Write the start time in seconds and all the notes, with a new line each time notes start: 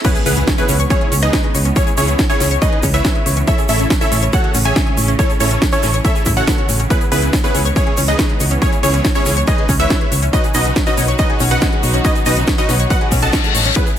0.04 C#3 E3 G#3 B3 C#4 E4 G#4 B4, kick, closed hi-hat, crash, impact, shaker
0.15 G#4, closed hi-hat, shaker
0.26 C#2 B3 C#4 E4 G#4 B4, open hi-hat, shaker
0.37 C#3, closed hi-hat, shaker
0.47 C#4, kick, snare, closed hi-hat, shaker
0.58 B3 C#4 E4 G#4 B4, closed hi-hat, shaker
0.69 C#2 C#4, open hi-hat, shaker
0.80 C#5, closed hi-hat, shaker
0.90 C#4 E4 G#4 C#5, kick, closed hi-hat, shaker
1.01 G#4, closed hi-hat
1.12 C#2 C#4, open hi-hat, shaker
1.22 C#3 D#4 G#4 B4 D#5, closed hi-hat, shaker
1.33 C#4, kick, snare, closed hi-hat, shaker
1.44 G#3, closed hi-hat
1.55 C#2 C#5, open hi-hat, shaker
1.65 C#4, closed hi-hat, shaker
1.76 C#4 E4 G#4 C#5, kick, closed hi-hat, shaker
1.87 G#4, closed hi-hat, shaker
1.97 C#2 C#4 E4 G#4 C#5, open hi-hat, shaker
2.08 C#3, closed hi-hat, shaker
2.19 C#4, kick, snare, closed hi-hat, shaker
2.30 C#4 E4 G#4 C#5, closed hi-hat, shaker
2.40 C#2 C#4, snare, open hi-hat, shaker
2.51 C#5, closed hi-hat, shaker
2.62 C#4 D#4 G#4 B4 D#5, kick, closed hi-hat, shaker
2.72 G#4, closed hi-hat
2.83 C#2 C#4, kick, open hi-hat, shaker
2.94 C#3 E4 B4 C#5 E5, closed hi-hat, shaker
3.05 C#4, kick, snare, closed hi-hat, shaker
3.15 G#3, closed hi-hat
3.26 C#2 C#5, open hi-hat, shaker
3.37 C#4, closed hi-hat, shaker
3.47 A2 C#4 E4 A4 C#5 E5, kick, closed hi-hat, shaker
3.58 G#4, closed hi-hat, shaker
3.68 A1 C#4 E4 A4 C#5 E5, open hi-hat, shaker
3.80 C#3, closed hi-hat, shaker
3.90 C#4, kick, snare, closed hi-hat, shaker
4.01 C#4 E4 A4 C#5 E5, closed hi-hat, shaker
4.12 A1 C#4, open hi-hat, shaker
4.22 C#5, closed hi-hat, shaker
4.33 C#4 F#4 A4 C#5 F#5, kick, closed hi-hat, shaker
4.44 G#4, closed hi-hat
4.54 A1 C#4, open hi-hat, shaker
4.65 C#3 G#4 C#5 E5 G#5, closed hi-hat, shaker
4.76 C#4, kick, snare, closed hi-hat, shaker
4.87 G#3, closed hi-hat
4.97 A1 C#5, open hi-hat, shaker
5.08 C#4, closed hi-hat, shaker
5.19 C#4 E4 A4 C#5, kick, closed hi-hat, shaker
5.30 G#4, closed hi-hat, shaker
5.40 A1 C#4 E4 A4 C#5, open hi-hat, shaker
5.50 C#3, closed hi-hat, shaker
5.62 C#4, kick, snare, closed hi-hat, shaker
5.72 C#4 E4 A4 C#5, closed hi-hat, shaker
5.83 A1 C#4, snare, open hi-hat, shaker
5.94 C#5, closed hi-hat, shaker
6.05 C#4 E4 A4 C#5 E5, kick, closed hi-hat, shaker
6.15 G#4, closed hi-hat, shaker
6.25 A1 E4, kick, open hi-hat, shaker
6.37 E4 F#4 A4 C#5 F#5, closed hi-hat, shaker
6.47 B3, kick, snare, closed hi-hat, shaker
6.58 C#4, closed hi-hat
6.69 A1 C#4, open hi-hat, shaker
6.80 C#4, closed hi-hat, shaker
6.90 E3 G#3 B3 C#4 E4 G#4 B4, kick, closed hi-hat, shaker
7.01 G#4, closed hi-hat, shaker
7.12 C#2 B3 C#4 E4 G#4 B4, open hi-hat, shaker
7.22 C#3, closed hi-hat, shaker
7.33 C#4, kick, snare, closed hi-hat, shaker
7.44 B3 C#4 E4 G#4 B4, closed hi-hat, shaker
7.55 C#2 C#4, open hi-hat, shaker
7.65 C#5, closed hi-hat, shaker
7.76 C#4 E4 G#4 C#5, kick, closed hi-hat, shaker
7.87 G#4, closed hi-hat
7.97 C#2 C#4, open hi-hat, shaker
8.08 C#3 D#4 G#4 B4 D#5, closed hi-hat, shaker
8.19 C#4, kick, snare, closed hi-hat, shaker
8.30 G#3, closed hi-hat
8.40 C#2 C#5, open hi-hat, shaker
8.51 C#4, closed hi-hat, shaker
8.62 C#4 E4 G#4 C#5, kick, closed hi-hat, shaker
8.72 G#4, closed hi-hat, shaker
8.83 C#2 C#4 E4 G#4 C#5, open hi-hat, shaker
8.93 C#3, closed hi-hat, shaker
9.04 C#4, kick, snare, closed hi-hat, shaker
9.15 C#4 E4 G#4 C#5, closed hi-hat, shaker
9.25 C#2 C#4, snare, open hi-hat, shaker
9.37 C#5, closed hi-hat, shaker
9.47 C#4 D#4 G#4 B4 D#5, kick, closed hi-hat, shaker
9.58 G#4, closed hi-hat
9.69 C#2 C#4, kick, open hi-hat, shaker
9.80 C#3 E4 B4 C#5 E5, closed hi-hat, shaker
9.90 C#4, kick, snare, closed hi-hat, shaker
10.01 G#3, closed hi-hat
10.12 C#2 C#5, open hi-hat, shaker
10.22 C#4, closed hi-hat, shaker
10.33 B2 D#3 F#3 C#4 D#4 F#4 B4 D#5, kick, closed hi-hat, shaker
10.44 G#4, closed hi-hat, shaker
10.54 B1 C#4 D#4 F#4 B4 D#5, open hi-hat, shaker
10.65 C#3, closed hi-hat, shaker
10.76 C#4, kick, snare, closed hi-hat, shaker
10.87 C#4 D#4 F#4 B4 D#5, closed hi-hat, shaker
10.97 B1 C#4, open hi-hat, shaker
11.08 C#5, closed hi-hat, shaker
11.18 C#4 D#4 F#4 B4 D#5, kick, closed hi-hat, shaker
11.30 G#4, closed hi-hat
11.40 B1 C#4, open hi-hat, shaker
11.51 C#3 F#4 B4 D#5 F#5, closed hi-hat, shaker
11.61 C#4, kick, snare, closed hi-hat, shaker
11.72 G#3, closed hi-hat
11.83 B1 C#5, open hi-hat, shaker
11.94 C#4, closed hi-hat, shaker
12.05 C#4 D#4 F#4 B4 D#5, kick, closed hi-hat, shaker
12.15 G#4, closed hi-hat, shaker
12.26 B1 C#4 D#4 F#4 B4 D#5, open hi-hat, shaker
12.37 C#3, closed hi-hat, shaker
12.47 C#4, kick, snare, closed hi-hat, shaker
12.58 C#4 D#4 F#4 B4 D#5, closed hi-hat, shaker
12.69 B1 C#4, snare, open hi-hat, shaker
12.79 C#5, closed hi-hat, shaker
12.90 C#4 F#4 B4 D#5 F#5, kick, closed hi-hat, reverse cymbal, shaker
13.01 G#4, closed hi-hat
13.12 B1 C#4, kick, open hi-hat, shaker
13.22 C#3 A4 D#5 F#5 A5, closed hi-hat, shaker
13.33 C#4, kick, snare, closed hi-hat, shaker
13.44 G#3, closed hi-hat, shaker
13.55 A1 C#5, open hi-hat, shaker
13.65 C#4, closed hi-hat, shaker
13.76 C#3 E3 G#3 B3 C#4 E4 G#4 B4, kick, closed hi-hat, shaker
13.87 G#4, closed hi-hat, shaker